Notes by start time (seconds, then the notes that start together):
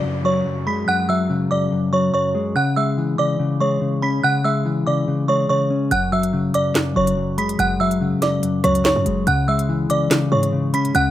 Already playing: C#3 F#3 D5 D6, downlifter
0.04 F#2
0.25 F#3 C#5 C#6
0.46 F#2
0.67 G#3 B5 B6
0.88 F#2 F#5 F#6
1.09 F#3 E5 E6
1.30 C#3
1.51 F#2 D5 D6
1.72 F#2
1.93 F#3 C#5 C#6
2.14 F#2 C#5 C#6
2.35 G#3
2.56 C#3 F#5 F#6
2.76 G#3 E5 E6
2.98 E3
3.18 C#3 D5 D6
3.39 C#3
3.60 G#3 C#5 C#6
3.81 C#3
4.02 C#4 B5 B6
4.24 C#3 F#5 F#6
4.44 G#3 E5 E6
4.65 E3
4.87 C#3 D5 D6
5.07 C#3
5.28 G#3 C#5 C#6
5.49 C#3 C#5 C#6
5.70 C#4
5.91 F#1 F#2 F#5 F#6, closed hi-hat
6.12 F#3 E5 E6
6.23 closed hi-hat
6.33 C#3
6.54 F#2 D5 D6, closed hi-hat
6.75 F#2, snare, clap, closed hi-hat
6.96 F#1 F#3 C#5 C#6
7.07 closed hi-hat
7.17 F#2
7.38 G#3 B5 B6, closed hi-hat
7.49 closed hi-hat
7.59 F#1 F#2 F#5 F#6, closed hi-hat
7.80 F#3 E5 E6
7.91 closed hi-hat
8.01 C#3
8.12 F#2
8.22 F#2 D5 D6, snare, closed hi-hat
8.43 F#2, closed hi-hat
8.64 C#2 F#3 C#5 C#6, cross-stick, closed hi-hat
8.75 closed hi-hat
8.85 F#2 C#5 C#6, snare, clap
8.96 F#2
9.06 F#1 G#3, closed hi-hat
9.27 C#2 C#3 F#5 F#6, closed hi-hat
9.48 G#3 E5 E6
9.59 closed hi-hat
9.69 E3
9.90 C#3 D5 D6, closed hi-hat
10.11 C#3, snare, clap, closed hi-hat
10.32 G#2 G#3 C#5 C#6
10.43 closed hi-hat
10.53 C#3
10.74 C#3 C#4 B5 B6, closed hi-hat
10.85 G#2, closed hi-hat
10.95 C#2 C#3 F#5 F#6, closed hi-hat